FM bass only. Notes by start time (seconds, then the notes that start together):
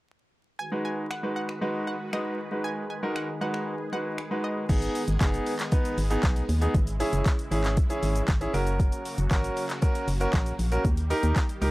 4.69 G#1
5.08 G#1
5.21 F#1
5.98 G#1
6.24 B1
6.49 D#2
6.75 G#1
7.13 F#1
7.51 G#1
8.03 G#1
8.29 G#1
8.54 F#1
9.18 F#1
9.31 G#1
10.08 F#1
10.34 A#1
10.59 A#1
10.85 D#2
11.23 D#2
11.62 C#2